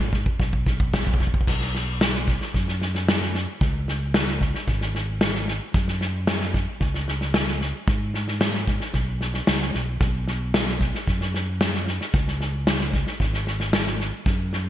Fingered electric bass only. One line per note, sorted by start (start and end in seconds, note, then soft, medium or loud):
0.00 0.23 G#2 loud
0.40 1.31 B1 medium
1.48 2.38 B1 loud
2.54 3.45 F#2 medium
3.61 4.52 C#2 loud
4.67 5.58 G#1 medium
5.75 6.65 F#2 loud
6.81 7.71 C#2 loud
7.88 8.78 G#2 loud
8.94 9.39 B1 medium
9.48 9.72 C#2 medium
9.75 9.98 B1 medium
10.01 10.91 B1 loud
11.08 11.98 F#2 medium
12.14 13.04 C#2 loud
13.20 14.10 G#1 medium
14.26 14.69 F#2 loud